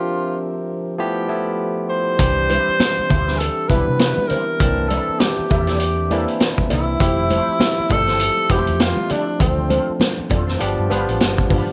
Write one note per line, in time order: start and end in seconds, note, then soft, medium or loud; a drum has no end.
0.00 0.98 D2 medium
0.00 0.69 F3 medium
0.00 0.97 F3 medium
0.00 0.70 C4 medium
0.00 0.98 C4 medium
0.00 0.70 D4 medium
0.00 0.39 F4 medium
0.00 0.74 G4 medium
0.00 0.95 A#4 medium
0.00 0.70 E5 medium
0.00 0.98 E5 medium
0.98 2.18 G2 medium
0.98 1.24 F3 loud
0.98 2.18 F3 medium
0.98 4.56 G3 medium
0.98 2.18 A3 medium
0.98 1.24 A3 loud
0.98 1.24 B3 medium
0.98 2.18 E4 medium
0.98 1.24 E4 medium
0.98 1.24 G4 loud
1.28 1.98 F3 medium
1.28 1.99 A3 medium
1.28 1.99 B3 medium
1.28 1.99 E4 medium
1.28 1.99 A4 medium
1.89 3.37 C5 loud
2.17 2.57 C2 loud
2.17 4.56 C3 medium
2.17 3.11 E3 medium
2.17 3.11 G3 medium
2.17 3.11 C4 medium
2.17 4.57 D4 medium
2.17 3.11 D4 medium
2.17 3.11 G4 medium
2.17 9.35 E5 medium
2.17 kick loud
2.17 closed hi-hat loud
2.17 muted conga soft
2.38 muted conga soft
2.49 2.71 G3 medium
2.49 2.71 D4 medium
2.49 2.72 E4 medium
2.49 2.72 B4 medium
2.49 closed hi-hat medium
2.49 high conga medium
2.69 muted fingered electric bass stroke soft
2.80 snare loud
2.80 closed hi-hat medium
2.80 muted conga soft
2.80 high conga medium
2.98 muted clean electric guitar stroke soft
2.98 muted fingered electric bass stroke medium
2.98 muted conga soft
3.10 3.47 D2 medium
3.10 3.27 G3 medium
3.10 3.27 D4 medium
3.10 3.27 E4 medium
3.10 3.27 C5 medium
3.10 kick medium
3.10 closed hi-hat medium
3.10 low conga medium
3.27 3.39 G3 medium
3.27 3.40 D4 medium
3.27 3.40 E4 medium
3.27 3.40 B4 medium
3.27 snare soft
3.36 3.40 G#4 medium
3.36 3.70 A4 medium
3.40 muted clean electric guitar stroke soft
3.40 closed hi-hat loud
3.40 muted conga soft
3.58 muted clean electric guitar stroke soft
3.68 3.84 C2 medium
3.68 4.40 E3 medium
3.68 3.92 G3 medium
3.68 4.40 B3 medium
3.68 4.40 C4 medium
3.68 3.87 D4 medium
3.68 4.40 D4 medium
3.68 3.87 E4 medium
3.68 4.41 E4 medium
3.68 4.29 B4 loud
3.68 3.86 B4 medium
3.68 kick medium
3.68 closed hi-hat medium
3.68 high conga medium
3.87 4.12 C3 loud
3.87 muted clean electric guitar stroke soft
3.99 muted clean electric guitar stroke soft
3.99 snare loud
3.99 closed hi-hat loud
3.99 muted conga soft
4.18 muted conga soft
4.18 high conga medium
4.28 4.48 G3 medium
4.28 4.47 D4 medium
4.28 4.46 E4 medium
4.28 4.90 A#4 loud
4.28 4.46 C5 medium
4.28 closed hi-hat medium
4.28 low conga medium
4.47 muted clean electric guitar stroke soft
4.60 4.97 C2 loud
4.60 6.99 D3 medium
4.60 5.52 E3 medium
4.60 10.57 G3 medium
4.60 5.52 A#3 medium
4.60 6.99 A#3 medium
4.60 5.52 C4 medium
4.60 5.52 D4 medium
4.60 5.53 A5 medium
4.60 kick loud
4.60 closed hi-hat loud
4.60 muted conga soft
4.78 muted conga soft
4.88 5.12 A#3 medium
4.88 5.12 E4 medium
4.88 5.21 A4 loud
4.88 5.12 A4 medium
4.88 5.12 D5 medium
4.88 closed hi-hat medium
4.88 high conga medium
5.09 muted fingered electric bass stroke soft
5.20 6.44 G4 medium
5.20 muted clean electric guitar stroke soft
5.20 snare loud
5.20 closed hi-hat medium
5.20 muted conga soft
5.20 high conga medium
5.37 muted clean electric guitar stroke soft
5.37 muted fingered electric bass stroke medium
5.50 6.24 E2 loud
5.50 5.67 A#3 medium
5.50 5.67 E4 medium
5.50 5.67 A4 medium
5.50 5.67 E5 medium
5.50 kick loud
5.50 closed hi-hat medium
5.50 low conga medium
5.67 5.79 A#3 soft
5.67 5.80 E4 medium
5.67 5.80 A4 medium
5.67 5.80 D5 medium
5.67 snare soft
5.67 closed hi-hat medium
5.80 closed hi-hat loud
5.98 muted clean electric guitar stroke soft
5.98 muted conga soft
6.10 6.80 E3 loud
6.10 6.32 A#3 medium
6.10 6.80 A#3 medium
6.10 6.80 C4 medium
6.10 6.81 D4 medium
6.10 6.27 E4 medium
6.10 6.81 E4 loud
6.10 6.27 A4 medium
6.10 6.26 D5 medium
6.10 closed hi-hat medium
6.10 high conga medium
6.27 muted clean electric guitar stroke soft
6.27 closed hi-hat medium
6.40 snare loud
6.40 closed hi-hat medium
6.58 kick medium
6.58 muted conga soft
6.58 high conga medium
6.69 6.94 C2 medium
6.69 6.92 A#3 medium
6.69 6.87 E4 medium
6.69 6.86 A4 medium
6.69 6.86 D5 medium
6.69 closed hi-hat medium
6.69 low conga medium
6.74 7.94 E4 loud
6.87 muted clean electric guitar stroke soft
6.99 7.38 F1 loud
6.99 7.91 F3 medium
6.99 9.38 F3 medium
6.99 7.08 G3 soft
6.99 7.92 C4 medium
6.99 7.92 E4 medium
6.99 9.38 G4 loud
6.99 7.92 G4 medium
6.99 kick loud
6.99 closed hi-hat medium
6.99 muted conga soft
7.07 7.95 A3 medium
7.30 7.52 A3 medium
7.30 7.52 E4 medium
7.30 7.52 G4 medium
7.30 7.53 C5 loud
7.30 closed hi-hat medium
7.30 high conga medium
7.48 muted fingered electric bass stroke soft
7.60 muted clean electric guitar stroke soft
7.60 snare loud
7.60 closed hi-hat medium
7.60 muted conga soft
7.60 high conga medium
7.78 muted clean electric guitar stroke medium
7.78 muted fingered electric bass stroke medium
7.90 8.28 G1 medium
7.90 8.08 A3 medium
7.90 8.08 E4 medium
7.90 8.07 G4 medium
7.90 8.53 A4 loud
7.90 8.08 D5 medium
7.90 kick loud
7.90 closed hi-hat medium
7.90 low conga medium
8.07 8.19 A3 medium
8.07 8.19 E4 medium
8.07 8.20 G4 medium
8.07 8.20 C5 medium
8.07 snare soft
8.07 closed hi-hat medium
8.19 muted clean electric guitar stroke soft
8.19 closed hi-hat loud
8.37 muted conga soft
8.50 8.70 F1 medium
8.50 9.20 F3 medium
8.50 8.72 A3 medium
8.50 9.20 A3 medium
8.50 9.20 C4 medium
8.50 8.67 E4 medium
8.50 8.67 G4 medium
8.50 9.20 G4 medium
8.50 8.83 G4 loud
8.50 8.67 C5 medium
8.50 9.20 E5 medium
8.50 kick medium
8.50 closed hi-hat medium
8.50 high conga medium
8.67 8.92 F2 loud
8.67 muted clean electric guitar stroke soft
8.67 closed hi-hat medium
8.80 9.13 F4 loud
8.80 muted clean electric guitar stroke soft
8.80 snare loud
8.80 closed hi-hat loud
8.97 muted conga soft
8.97 high conga medium
9.09 9.28 A3 medium
9.09 9.41 D4 medium
9.09 9.27 E4 medium
9.09 9.27 G4 medium
9.09 9.27 D5 medium
9.09 closed hi-hat medium
9.09 low conga medium
9.27 muted clean electric guitar stroke soft
9.39 9.78 D2 loud
9.39 11.61 D3 medium
9.39 10.31 F3 medium
9.39 10.32 A3 medium
9.39 10.32 C4 medium
9.39 9.97 C4 medium
9.39 10.60 C4 medium
9.39 10.32 D4 medium
9.39 11.61 F4 medium
9.39 10.32 A4 medium
9.39 kick loud
9.39 closed hi-hat loud
9.58 muted conga soft
9.69 9.92 C4 medium
9.69 9.92 F4 medium
9.69 9.92 A4 medium
9.69 9.92 C5 medium
9.69 closed hi-hat medium
9.69 high conga medium
9.89 muted fingered electric bass stroke soft
10.00 muted clean electric guitar stroke soft
10.00 snare loud
10.00 closed hi-hat medium
10.00 muted conga soft
10.00 high conga medium
10.17 muted clean electric guitar stroke medium
10.17 muted fingered electric bass stroke soft
10.17 muted conga soft
10.30 10.54 F2 medium
10.30 10.47 C4 medium
10.30 10.47 F4 medium
10.30 10.47 A4 medium
10.30 10.47 D5 medium
10.30 kick medium
10.30 closed hi-hat medium
10.30 low conga medium
10.47 10.59 C4 soft
10.47 10.59 F4 medium
10.47 10.60 A4 medium
10.47 10.60 C5 medium
10.47 snare soft
10.59 10.75 G1 loud
10.59 10.85 F3 loud
10.59 10.85 G3 medium
10.59 11.61 G3 medium
10.59 10.85 B3 medium
10.59 11.61 B3 medium
10.59 10.86 D4 medium
10.59 10.86 G4 loud
10.59 muted clean electric guitar stroke soft
10.59 closed hi-hat loud
10.76 10.88 G2 medium
10.76 muted clean electric guitar stroke soft
10.76 muted conga soft
10.88 11.04 G1 loud
10.88 11.60 F3 medium
10.88 11.11 G3 medium
10.88 11.60 G3 medium
10.88 11.60 B3 medium
10.88 11.06 D4 medium
10.88 11.60 D4 medium
10.88 11.05 F4 medium
10.88 11.61 F4 medium
10.88 11.05 B4 loud
10.88 closed hi-hat medium
10.88 high conga medium
11.06 11.18 A1 medium
11.06 muted clean electric guitar stroke soft
11.06 closed hi-hat medium
11.20 11.45 G1 medium
11.20 snare loud
11.20 closed hi-hat medium
11.20 muted conga soft
11.36 muted clean electric guitar stroke soft
11.36 kick medium
11.36 high conga medium
11.49 11.64 G1 medium
11.49 11.72 G3 medium
11.49 11.67 D4 medium
11.49 11.66 F4 medium
11.49 11.66 B4 medium
11.49 kick loud
11.49 open hi-hat medium
11.49 low conga medium
11.67 muted clean electric guitar stroke soft